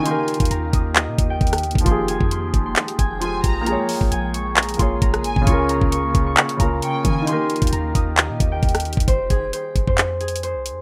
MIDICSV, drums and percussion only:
0, 0, Header, 1, 2, 480
1, 0, Start_track
1, 0, Key_signature, -4, "minor"
1, 0, Tempo, 451128
1, 59, Time_signature, 4, 2, 24, 8
1, 11508, End_track
2, 0, Start_track
2, 0, Title_t, "Drums"
2, 59, Note_on_c, 9, 42, 79
2, 166, Note_off_c, 9, 42, 0
2, 297, Note_on_c, 9, 46, 83
2, 299, Note_on_c, 9, 42, 46
2, 362, Note_off_c, 9, 42, 0
2, 362, Note_on_c, 9, 42, 55
2, 403, Note_off_c, 9, 46, 0
2, 426, Note_off_c, 9, 42, 0
2, 426, Note_on_c, 9, 42, 68
2, 427, Note_on_c, 9, 36, 95
2, 483, Note_off_c, 9, 42, 0
2, 483, Note_on_c, 9, 42, 80
2, 533, Note_off_c, 9, 36, 0
2, 541, Note_off_c, 9, 42, 0
2, 541, Note_on_c, 9, 42, 77
2, 648, Note_off_c, 9, 42, 0
2, 780, Note_on_c, 9, 36, 100
2, 780, Note_on_c, 9, 42, 75
2, 886, Note_off_c, 9, 36, 0
2, 887, Note_off_c, 9, 42, 0
2, 1019, Note_on_c, 9, 39, 110
2, 1021, Note_on_c, 9, 42, 66
2, 1125, Note_off_c, 9, 39, 0
2, 1128, Note_off_c, 9, 42, 0
2, 1260, Note_on_c, 9, 36, 95
2, 1261, Note_on_c, 9, 42, 80
2, 1366, Note_off_c, 9, 36, 0
2, 1367, Note_off_c, 9, 42, 0
2, 1499, Note_on_c, 9, 36, 101
2, 1499, Note_on_c, 9, 42, 43
2, 1562, Note_off_c, 9, 42, 0
2, 1562, Note_on_c, 9, 42, 55
2, 1606, Note_off_c, 9, 36, 0
2, 1626, Note_off_c, 9, 42, 0
2, 1626, Note_on_c, 9, 37, 88
2, 1626, Note_on_c, 9, 42, 64
2, 1682, Note_off_c, 9, 42, 0
2, 1682, Note_on_c, 9, 42, 72
2, 1733, Note_off_c, 9, 37, 0
2, 1739, Note_off_c, 9, 42, 0
2, 1739, Note_on_c, 9, 42, 50
2, 1819, Note_off_c, 9, 42, 0
2, 1819, Note_on_c, 9, 42, 66
2, 1866, Note_on_c, 9, 36, 99
2, 1899, Note_off_c, 9, 42, 0
2, 1899, Note_on_c, 9, 42, 80
2, 1972, Note_off_c, 9, 36, 0
2, 1979, Note_off_c, 9, 42, 0
2, 1979, Note_on_c, 9, 36, 114
2, 1979, Note_on_c, 9, 42, 81
2, 2085, Note_off_c, 9, 36, 0
2, 2085, Note_off_c, 9, 42, 0
2, 2217, Note_on_c, 9, 42, 75
2, 2323, Note_off_c, 9, 42, 0
2, 2347, Note_on_c, 9, 36, 94
2, 2453, Note_off_c, 9, 36, 0
2, 2461, Note_on_c, 9, 42, 78
2, 2568, Note_off_c, 9, 42, 0
2, 2699, Note_on_c, 9, 36, 97
2, 2700, Note_on_c, 9, 42, 66
2, 2806, Note_off_c, 9, 36, 0
2, 2807, Note_off_c, 9, 42, 0
2, 2939, Note_on_c, 9, 39, 114
2, 2939, Note_on_c, 9, 42, 57
2, 3045, Note_off_c, 9, 39, 0
2, 3045, Note_off_c, 9, 42, 0
2, 3066, Note_on_c, 9, 42, 56
2, 3173, Note_off_c, 9, 42, 0
2, 3180, Note_on_c, 9, 36, 95
2, 3181, Note_on_c, 9, 42, 81
2, 3286, Note_off_c, 9, 36, 0
2, 3287, Note_off_c, 9, 42, 0
2, 3421, Note_on_c, 9, 42, 70
2, 3527, Note_off_c, 9, 42, 0
2, 3658, Note_on_c, 9, 36, 87
2, 3659, Note_on_c, 9, 42, 83
2, 3765, Note_off_c, 9, 36, 0
2, 3765, Note_off_c, 9, 42, 0
2, 3899, Note_on_c, 9, 42, 79
2, 4005, Note_off_c, 9, 42, 0
2, 4137, Note_on_c, 9, 46, 81
2, 4243, Note_off_c, 9, 46, 0
2, 4267, Note_on_c, 9, 36, 90
2, 4373, Note_off_c, 9, 36, 0
2, 4381, Note_on_c, 9, 42, 77
2, 4488, Note_off_c, 9, 42, 0
2, 4621, Note_on_c, 9, 42, 74
2, 4727, Note_off_c, 9, 42, 0
2, 4859, Note_on_c, 9, 39, 114
2, 4859, Note_on_c, 9, 42, 57
2, 4922, Note_off_c, 9, 42, 0
2, 4922, Note_on_c, 9, 42, 58
2, 4965, Note_off_c, 9, 39, 0
2, 4986, Note_off_c, 9, 42, 0
2, 4986, Note_on_c, 9, 42, 56
2, 5042, Note_off_c, 9, 42, 0
2, 5042, Note_on_c, 9, 42, 57
2, 5100, Note_on_c, 9, 36, 93
2, 5101, Note_off_c, 9, 42, 0
2, 5101, Note_on_c, 9, 42, 80
2, 5206, Note_off_c, 9, 36, 0
2, 5207, Note_off_c, 9, 42, 0
2, 5339, Note_on_c, 9, 36, 105
2, 5339, Note_on_c, 9, 42, 70
2, 5445, Note_off_c, 9, 42, 0
2, 5446, Note_off_c, 9, 36, 0
2, 5466, Note_on_c, 9, 37, 92
2, 5466, Note_on_c, 9, 42, 41
2, 5573, Note_off_c, 9, 37, 0
2, 5573, Note_off_c, 9, 42, 0
2, 5579, Note_on_c, 9, 42, 75
2, 5685, Note_off_c, 9, 42, 0
2, 5706, Note_on_c, 9, 36, 100
2, 5812, Note_off_c, 9, 36, 0
2, 5819, Note_on_c, 9, 36, 115
2, 5819, Note_on_c, 9, 42, 80
2, 5925, Note_off_c, 9, 36, 0
2, 5926, Note_off_c, 9, 42, 0
2, 6057, Note_on_c, 9, 42, 76
2, 6163, Note_off_c, 9, 42, 0
2, 6187, Note_on_c, 9, 36, 93
2, 6293, Note_off_c, 9, 36, 0
2, 6302, Note_on_c, 9, 42, 81
2, 6408, Note_off_c, 9, 42, 0
2, 6540, Note_on_c, 9, 36, 95
2, 6541, Note_on_c, 9, 42, 71
2, 6646, Note_off_c, 9, 36, 0
2, 6647, Note_off_c, 9, 42, 0
2, 6779, Note_on_c, 9, 39, 113
2, 6779, Note_on_c, 9, 42, 56
2, 6885, Note_off_c, 9, 39, 0
2, 6885, Note_off_c, 9, 42, 0
2, 6906, Note_on_c, 9, 42, 57
2, 7013, Note_off_c, 9, 42, 0
2, 7020, Note_on_c, 9, 36, 95
2, 7020, Note_on_c, 9, 42, 78
2, 7126, Note_off_c, 9, 36, 0
2, 7127, Note_off_c, 9, 42, 0
2, 7261, Note_on_c, 9, 42, 71
2, 7367, Note_off_c, 9, 42, 0
2, 7499, Note_on_c, 9, 36, 92
2, 7499, Note_on_c, 9, 42, 87
2, 7605, Note_off_c, 9, 36, 0
2, 7605, Note_off_c, 9, 42, 0
2, 7739, Note_on_c, 9, 42, 77
2, 7845, Note_off_c, 9, 42, 0
2, 7976, Note_on_c, 9, 46, 83
2, 7979, Note_on_c, 9, 42, 46
2, 8042, Note_off_c, 9, 42, 0
2, 8042, Note_on_c, 9, 42, 59
2, 8083, Note_off_c, 9, 46, 0
2, 8105, Note_off_c, 9, 42, 0
2, 8105, Note_on_c, 9, 42, 70
2, 8107, Note_on_c, 9, 36, 93
2, 8162, Note_off_c, 9, 42, 0
2, 8162, Note_on_c, 9, 42, 76
2, 8213, Note_off_c, 9, 36, 0
2, 8221, Note_off_c, 9, 42, 0
2, 8221, Note_on_c, 9, 42, 78
2, 8327, Note_off_c, 9, 42, 0
2, 8460, Note_on_c, 9, 36, 95
2, 8460, Note_on_c, 9, 42, 72
2, 8566, Note_off_c, 9, 36, 0
2, 8566, Note_off_c, 9, 42, 0
2, 8699, Note_on_c, 9, 39, 112
2, 8701, Note_on_c, 9, 42, 68
2, 8805, Note_off_c, 9, 39, 0
2, 8807, Note_off_c, 9, 42, 0
2, 8939, Note_on_c, 9, 36, 93
2, 8940, Note_on_c, 9, 42, 82
2, 9046, Note_off_c, 9, 36, 0
2, 9047, Note_off_c, 9, 42, 0
2, 9179, Note_on_c, 9, 36, 103
2, 9179, Note_on_c, 9, 42, 43
2, 9242, Note_off_c, 9, 42, 0
2, 9242, Note_on_c, 9, 42, 54
2, 9286, Note_off_c, 9, 36, 0
2, 9306, Note_off_c, 9, 42, 0
2, 9306, Note_on_c, 9, 37, 91
2, 9306, Note_on_c, 9, 42, 61
2, 9362, Note_off_c, 9, 42, 0
2, 9362, Note_on_c, 9, 42, 75
2, 9413, Note_off_c, 9, 37, 0
2, 9419, Note_off_c, 9, 42, 0
2, 9419, Note_on_c, 9, 42, 49
2, 9499, Note_off_c, 9, 42, 0
2, 9499, Note_on_c, 9, 42, 66
2, 9546, Note_on_c, 9, 36, 97
2, 9579, Note_off_c, 9, 42, 0
2, 9579, Note_on_c, 9, 42, 78
2, 9652, Note_off_c, 9, 36, 0
2, 9659, Note_off_c, 9, 42, 0
2, 9659, Note_on_c, 9, 36, 114
2, 9659, Note_on_c, 9, 42, 76
2, 9765, Note_off_c, 9, 36, 0
2, 9766, Note_off_c, 9, 42, 0
2, 9897, Note_on_c, 9, 42, 70
2, 9899, Note_on_c, 9, 36, 102
2, 10003, Note_off_c, 9, 42, 0
2, 10005, Note_off_c, 9, 36, 0
2, 10142, Note_on_c, 9, 42, 77
2, 10248, Note_off_c, 9, 42, 0
2, 10380, Note_on_c, 9, 36, 93
2, 10380, Note_on_c, 9, 42, 67
2, 10486, Note_off_c, 9, 36, 0
2, 10487, Note_off_c, 9, 42, 0
2, 10507, Note_on_c, 9, 36, 91
2, 10613, Note_off_c, 9, 36, 0
2, 10619, Note_on_c, 9, 39, 110
2, 10621, Note_on_c, 9, 42, 66
2, 10725, Note_off_c, 9, 39, 0
2, 10728, Note_off_c, 9, 42, 0
2, 10859, Note_on_c, 9, 42, 47
2, 10939, Note_off_c, 9, 42, 0
2, 10939, Note_on_c, 9, 42, 64
2, 11019, Note_off_c, 9, 42, 0
2, 11019, Note_on_c, 9, 42, 82
2, 11101, Note_off_c, 9, 42, 0
2, 11101, Note_on_c, 9, 42, 68
2, 11207, Note_off_c, 9, 42, 0
2, 11339, Note_on_c, 9, 42, 82
2, 11445, Note_off_c, 9, 42, 0
2, 11508, End_track
0, 0, End_of_file